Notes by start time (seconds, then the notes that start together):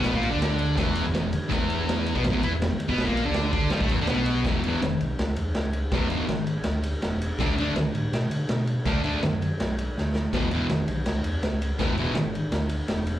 Already playing: B1 B2 B3
0.04 kick, snare, ride
0.13 A#1 A#2 A#3, kick
0.23 ride
0.30 D2 D3 D4
0.42 snare, ride
0.59 ride
0.76 E1 E2 E3, kick, snare, ride
0.95 ride
1.05 E1 E2
1.14 E1 E2, snare, ride
1.33 ride
1.49 E1 E2 E3, kick, snare, ride
1.70 ride
1.89 snare, ride
2.06 ride
2.15 B1 B2 B3, kick
2.24 E1 E2, snare, ride
2.30 E1 E2 E3, kick
2.43 E2 E3 E4, ride
2.51 E1 E2
2.62 snare, ride
2.80 ride
2.88 B1 B2 B3, kick
2.98 kick, snare, ride
3.06 A#1 A#2 A#3, kick
3.17 ride
3.26 D2 D3 D4
3.34 snare, ride
3.52 D2 D3 D4, kick, ride
3.70 G1 G2 G3, snare, ride
3.81 A1 A2 A3, kick
3.89 E1 E2 E3, ride
3.99 D2 D3 D4
4.07 B1 B2 B3, snare, ride
4.26 ride
4.45 E1 E2 B2 E3, kick, snare, ride
4.64 E2 B2 E3, ride
4.82 E1, snare, ride
5.00 B1, ride
5.19 C#2, snare, ride
5.36 E2, ride
5.54 C#2, snare, ride
5.73 ride
5.92 E1 E2 B2 E3, kick, snare, ride
6.09 E2 B2 E3, ride
6.28 G#1, snare, ride
6.47 ride
6.64 D2, snare, ride
6.83 ride
7.02 E1, snare, ride
7.22 ride
7.39 D2 D3 A3 D4, kick, snare, ride
7.57 D3 A3 D4, ride
7.76 D2, snare, ride
7.94 A2, ride
8.13 B2, snare, ride
8.30 D3, ride
8.49 B2, snare, ride
8.67 ride
8.85 D2 D3 A3 D4, kick, snare, ride
9.04 D3 A3 D4, ride
9.22 F#2, snare, ride
9.42 ride
9.60 B1, snare, ride
9.78 ride
9.98 D2, snare
10.15 snare
10.33 E1 E2 B2 E3, kick, snare, crash
10.51 E2 B2 E3, ride
10.69 E1, snare, ride
10.88 B1, ride
11.06 C#2, snare, ride
11.24 E2, ride
11.43 C#2, snare, ride
11.62 ride
11.79 E1 E2 B2 E3, kick, snare, ride
11.98 E2 B2 E3, ride
12.15 G#1, snare, ride
12.35 ride
12.51 D2, snare, ride
12.69 ride
12.88 E1, snare, ride
13.07 ride